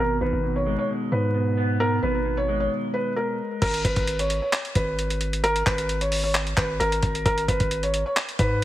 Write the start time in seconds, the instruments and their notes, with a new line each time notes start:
0.00 808-style bass G#1, clean electric guitar B2, felt piano A#4
0.21 808-style bass G#1, clean electric guitar D#3, felt piano B4
0.33 808-style bass G#1
0.43 clean electric guitar B2
0.56 felt piano C#5
0.66 clean electric guitar G#3
0.79 felt piano C#5
0.89 clean electric guitar B2
1.12 808-style bass G#2, felt piano B4
1.34 clean electric guitar B2
1.57 clean electric guitar B3
1.80 clean electric guitar B2, felt piano A#4
2.02 808-style bass G#1, clean electric guitar D#3, felt piano B4
2.25 clean electric guitar B2
2.37 felt piano C#5
2.48 clean electric guitar G#3
2.60 felt piano C#5
2.94 felt piano B4
3.16 felt piano A#4
3.62 808-style bass G#1, felt piano A#4, kick, closed hi-hat, crash
3.74 closed hi-hat
3.85 808-style bass G#1, felt piano B4, kick, closed hi-hat
3.96 808-style bass G#1, kick, closed hi-hat
4.07 closed hi-hat
4.19 felt piano C#5, closed hi-hat
4.30 closed hi-hat
4.42 felt piano C#5
4.53 clap, closed hi-hat
4.65 closed hi-hat
4.75 808-style bass G#1, felt piano B4, kick, closed hi-hat
4.99 closed hi-hat
5.10 closed hi-hat
5.21 closed hi-hat
5.33 closed hi-hat
5.44 felt piano A#4, closed hi-hat
5.56 closed hi-hat
5.66 808-style bass G#1, felt piano B4, kick, clap, closed hi-hat
5.78 closed hi-hat
5.89 closed hi-hat
6.01 felt piano C#5, closed hi-hat
6.12 open hi-hat
6.23 felt piano C#5
6.35 clap, closed hi-hat
6.47 closed hi-hat
6.57 808-style bass G#1, felt piano B4, kick, clap, closed hi-hat
6.80 808-style bass G#1, felt piano A#4, closed hi-hat
6.92 closed hi-hat
7.03 808-style bass G#1, kick, closed hi-hat
7.15 closed hi-hat
7.25 808-style bass G#1, felt piano A#4, kick, closed hi-hat
7.38 closed hi-hat
7.48 808-style bass G#1, felt piano B4, kick, closed hi-hat
7.60 808-style bass G#1, kick, closed hi-hat
7.71 closed hi-hat
7.83 felt piano C#5, closed hi-hat
7.94 closed hi-hat
8.06 felt piano C#5
8.16 clap, closed hi-hat
8.29 closed hi-hat
8.39 808-style bass G#2, felt piano B4, kick, closed hi-hat